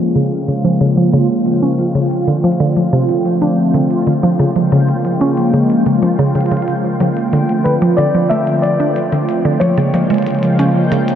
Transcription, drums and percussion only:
0.16 closed hi-hat medium
0.48 closed hi-hat medium
0.65 closed hi-hat medium
0.81 closed hi-hat medium
1.13 closed hi-hat medium
1.30 closed hi-hat soft
1.46 closed hi-hat medium
1.79 closed hi-hat medium
1.95 closed hi-hat soft
2.11 closed hi-hat medium
2.28 closed hi-hat soft
2.52 closed hi-hat medium
2.60 closed hi-hat soft
2.76 closed hi-hat medium
3.09 closed hi-hat medium
3.25 closed hi-hat soft
3.42 closed hi-hat medium
3.74 closed hi-hat medium
3.91 closed hi-hat soft
4.07 closed hi-hat medium
4.40 closed hi-hat medium
4.56 closed hi-hat soft
4.72 closed hi-hat medium
4.89 closed hi-hat soft
5.05 closed hi-hat medium
5.21 closed hi-hat soft
5.37 closed hi-hat medium
5.54 closed hi-hat soft
5.70 closed hi-hat medium
5.86 closed hi-hat soft
6.03 closed hi-hat medium
6.19 closed hi-hat soft
6.35 closed hi-hat medium
6.41 closed hi-hat medium
6.46 closed hi-hat soft
6.52 closed hi-hat soft
6.57 closed hi-hat soft
6.62 closed hi-hat soft
6.68 closed hi-hat medium
7.00 closed hi-hat medium
7.17 closed hi-hat soft
7.33 closed hi-hat medium
7.49 closed hi-hat soft
7.66 closed hi-hat medium
7.82 closed hi-hat soft
7.98 closed hi-hat medium
8.31 closed hi-hat medium
8.47 closed hi-hat soft
8.64 closed hi-hat medium
8.96 closed hi-hat medium
9.12 closed hi-hat soft
9.29 closed hi-hat medium
9.61 closed hi-hat medium
9.78 closed hi-hat soft
9.94 closed hi-hat medium
10.10 closed hi-hat soft
10.14 closed hi-hat soft
10.18 closed hi-hat soft
10.22 closed hi-hat soft
10.27 closed hi-hat medium
10.31 closed hi-hat soft
10.35 closed hi-hat soft
10.39 closed hi-hat soft
10.43 closed hi-hat soft
10.59 closed hi-hat medium
10.92 closed hi-hat medium
11.08 closed hi-hat soft

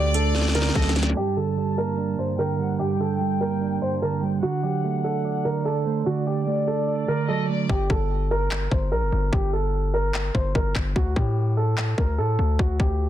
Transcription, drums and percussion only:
0.14 closed hi-hat loud
0.35 snare medium
0.41 snare medium
0.48 snare medium
0.55 snare medium
0.55 closed hi-hat medium
0.62 snare medium
0.69 snare medium
0.75 kick loud
0.75 snare medium
0.75 closed hi-hat soft
0.82 snare medium
0.82 closed hi-hat soft
0.89 snare loud
0.89 closed hi-hat medium
0.96 snare medium
0.96 closed hi-hat medium
1.03 snare loud
1.03 closed hi-hat medium
1.10 snare loud
1.10 closed hi-hat medium
1.37 closed hi-hat medium
1.57 closed hi-hat medium
1.98 closed hi-hat medium
2.18 closed hi-hat medium
2.39 closed hi-hat medium
2.59 closed hi-hat soft
2.64 closed hi-hat soft
2.69 closed hi-hat medium
2.75 closed hi-hat medium
2.79 closed hi-hat medium
3.00 closed hi-hat medium
3.07 closed hi-hat medium
3.14 closed hi-hat soft
3.20 closed hi-hat medium
3.41 closed hi-hat medium
3.82 closed hi-hat soft
3.88 closed hi-hat medium
3.95 closed hi-hat medium
4.02 closed hi-hat medium
4.23 closed hi-hat medium
4.43 closed hi-hat medium
4.63 closed hi-hat medium
4.84 closed hi-hat medium
5.25 closed hi-hat medium
5.45 closed hi-hat medium
5.66 closed hi-hat medium
5.86 closed hi-hat soft
5.91 closed hi-hat soft
5.96 closed hi-hat medium
6.01 closed hi-hat medium
6.06 closed hi-hat medium
6.27 closed hi-hat soft
6.32 closed hi-hat medium
6.37 closed hi-hat medium
6.42 closed hi-hat medium
6.47 closed hi-hat medium
6.68 closed hi-hat medium
7.69 kick loud
7.90 kick medium
8.51 clap loud
8.71 kick loud
9.33 kick loud
10.14 clap loud
10.35 kick medium
10.55 kick medium
10.75 kick loud
10.75 clap loud
10.96 kick loud
11.16 kick medium
11.78 clap loud
11.98 kick loud
12.59 kick loud
12.80 kick loud

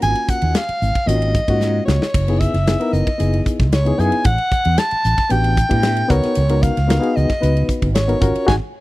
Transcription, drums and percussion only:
0.02 hi-hat pedal medium
0.02 ride medium
0.15 ride medium
0.28 kick medium
0.28 hi-hat pedal medium
0.42 ride medium
0.55 snare loud
0.55 hi-hat pedal medium
0.55 ride medium
0.69 ride medium
0.82 hi-hat pedal medium
0.95 kick medium
0.95 ride medium
1.08 hi-hat pedal medium
1.08 ride medium
1.22 ride medium
1.34 kick medium
1.34 hi-hat pedal medium
1.48 kick medium
1.48 ride medium
1.61 snare medium
1.61 hi-hat pedal medium
1.88 snare medium
1.88 hi-hat pedal medium
2.02 snare medium
2.14 kick loud
2.14 hi-hat pedal medium
2.14 crash medium
2.14 ride medium
2.28 ride medium
2.41 kick medium
2.41 hi-hat pedal medium
2.54 snare soft
2.54 ride medium
2.67 snare loud
2.67 hi-hat pedal medium
2.67 ride medium
2.81 ride medium
2.93 hi-hat pedal medium
3.07 kick medium
3.07 ride medium
3.20 hi-hat pedal medium
3.20 ride medium
3.33 ride medium
3.46 kick medium
3.46 hi-hat pedal medium
3.60 kick medium
3.60 snare soft
3.60 ride medium
3.72 snare loud
3.72 hi-hat pedal medium
3.72 ride medium
3.86 ride medium
3.99 hi-hat pedal medium
4.12 ride medium
4.24 kick loud
4.24 hi-hat pedal medium
4.24 ride medium
4.38 ride medium
4.51 kick medium
4.51 hi-hat pedal medium
4.65 ride medium
4.78 snare loud
4.78 hi-hat pedal medium
4.78 ride medium
4.91 ride medium
5.04 hi-hat pedal medium
5.18 kick medium
5.18 snare soft
5.18 ride medium
5.30 hi-hat pedal medium
5.30 ride medium
5.44 ride medium
5.57 kick medium
5.57 hi-hat pedal medium
5.71 kick medium
5.71 ride medium
5.83 snare loud
5.83 hi-hat pedal medium
5.83 ride medium
5.97 ride medium
6.09 kick medium
6.09 snare soft
6.09 hi-hat pedal medium
6.23 snare soft
6.23 ride medium
6.35 hi-hat pedal medium
6.35 ride medium
6.49 ride medium
6.62 kick medium
6.62 hi-hat pedal medium
6.77 snare soft
6.77 ride medium
6.90 snare loud
6.90 hi-hat pedal medium
6.90 ride medium
7.03 ride medium
7.17 hi-hat pedal medium
7.30 kick medium
7.30 snare soft
7.30 ride soft
7.43 hi-hat pedal medium
7.43 ride medium
7.57 ride medium
7.69 kick medium
7.69 hi-hat pedal medium
7.82 kick medium
7.82 ride medium
7.95 snare loud
7.95 hi-hat pedal medium
7.95 ride medium
8.09 ride medium
8.22 kick loud
8.22 hi-hat pedal medium
8.35 ride medium
8.48 kick medium
8.48 snare medium

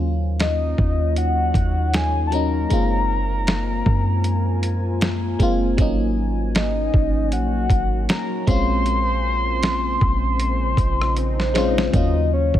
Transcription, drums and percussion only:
0.40 snare medium
0.40 closed hi-hat medium
0.78 kick medium
1.16 closed hi-hat medium
1.54 kick medium
1.54 closed hi-hat medium
1.94 snare loud
1.94 closed hi-hat medium
2.32 closed hi-hat medium
2.70 closed hi-hat medium
3.47 snare loud
3.47 closed hi-hat medium
3.86 kick medium
4.24 closed hi-hat medium
4.63 closed hi-hat medium
5.01 snare loud
5.01 closed hi-hat medium
5.40 kick medium
5.40 closed hi-hat medium
5.78 kick loud
5.78 closed hi-hat medium
6.55 snare loud
6.55 closed hi-hat medium
6.94 kick medium
7.32 closed hi-hat medium
7.70 kick loud
7.70 closed hi-hat medium
8.09 snare loud
8.09 closed hi-hat medium
8.47 kick loud
8.47 closed hi-hat medium
8.86 closed hi-hat medium
9.63 snare loud
9.63 closed hi-hat medium
10.01 kick medium
10.40 closed hi-hat medium
10.77 kick loud
10.77 closed hi-hat medium
11.02 cross-stick medium
11.17 closed hi-hat medium
11.40 snare medium
11.55 snare medium
11.55 closed hi-hat medium
11.78 snare medium
11.94 kick loud
11.94 closed hi-hat medium
12.54 kick medium

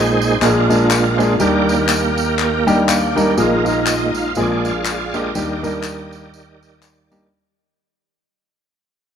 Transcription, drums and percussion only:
0.22 tambourine medium
0.42 clap medium
0.42 tambourine medium
0.70 tambourine medium
0.90 clap loud
0.90 tambourine loud
1.20 tambourine medium
1.40 tambourine medium
1.69 tambourine medium
1.89 clap loud
1.89 tambourine medium
2.18 tambourine medium
2.39 clap medium
2.39 tambourine medium
2.68 tambourine medium
2.89 clap loud
2.89 tambourine loud
3.18 tambourine medium
3.38 tambourine medium
3.66 tambourine soft
3.86 clap loud
3.86 tambourine loud
4.15 tambourine medium
4.35 tambourine medium
4.65 tambourine soft
4.85 clap loud
4.85 tambourine loud
5.14 tambourine medium
5.35 tambourine medium
5.64 tambourine medium
5.83 clap medium
5.83 tambourine loud
6.12 tambourine medium
6.34 tambourine medium
6.63 tambourine medium
6.82 clap loud
6.82 tambourine loud
7.12 tambourine medium

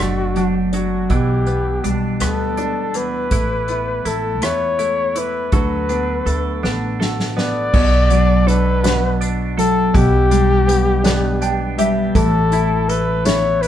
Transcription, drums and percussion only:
0.00 cross-stick loud
0.36 closed hi-hat soft
0.73 closed hi-hat medium
1.10 kick medium
1.10 closed hi-hat medium
1.46 closed hi-hat soft
1.84 closed hi-hat medium
2.20 cross-stick loud
2.20 closed hi-hat medium
2.57 closed hi-hat soft
2.94 closed hi-hat medium
3.31 kick medium
3.31 closed hi-hat medium
3.68 closed hi-hat soft
4.05 closed hi-hat medium
4.42 cross-stick loud
4.42 closed hi-hat medium
4.79 closed hi-hat soft
5.16 closed hi-hat medium
5.52 kick loud
5.52 closed hi-hat medium
5.89 closed hi-hat soft
6.27 closed hi-hat medium
6.64 snare medium
7.01 snare medium
7.20 snare medium
7.38 snare medium
7.74 kick loud
7.74 crash loud
8.10 closed hi-hat medium
8.48 closed hi-hat medium
8.84 snare loud
8.84 closed hi-hat loud
9.21 closed hi-hat medium
9.59 closed hi-hat medium
9.95 kick loud
9.95 closed hi-hat medium
10.31 closed hi-hat medium
10.69 closed hi-hat medium
11.04 snare loud
11.04 closed hi-hat medium
11.42 closed hi-hat medium
11.78 closed hi-hat medium
12.15 kick loud
12.15 closed hi-hat medium
12.52 closed hi-hat medium
12.89 closed hi-hat medium
13.25 snare loud
13.25 closed hi-hat loud
13.63 closed hi-hat medium

